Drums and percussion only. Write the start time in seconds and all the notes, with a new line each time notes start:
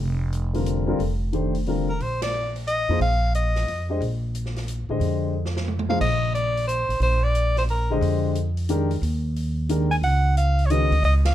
0.33 closed hi-hat
0.54 open hi-hat
0.66 closed hi-hat
1.00 open hi-hat
1.33 closed hi-hat
1.55 open hi-hat
1.66 open hi-hat
2.00 open hi-hat
2.22 snare, ride
2.56 open hi-hat
2.67 closed hi-hat
3.01 open hi-hat
3.34 closed hi-hat
3.56 snare, open hi-hat
3.68 open hi-hat
4.01 open hi-hat
4.35 closed hi-hat
4.46 snare
4.56 snare, open hi-hat
4.68 closed hi-hat
5.01 open hi-hat
5.46 snare
5.57 snare
5.68 mid tom
5.79 mid tom
5.90 mid tom
6.01 kick, crash
6.35 closed hi-hat
6.57 open hi-hat
6.69 closed hi-hat
6.90 open hi-hat
7.02 open hi-hat
7.35 closed hi-hat
7.57 snare, open hi-hat
7.69 open hi-hat
8.02 open hi-hat
8.35 closed hi-hat
8.57 open hi-hat
8.69 closed hi-hat
8.91 open hi-hat
9.03 open hi-hat
9.36 open hi-hat
9.69 closed hi-hat
9.91 open hi-hat
10.03 open hi-hat
10.37 closed hi-hat
10.59 open hi-hat
10.70 closed hi-hat
10.92 open hi-hat
11.04 open hi-hat
11.25 snare, ride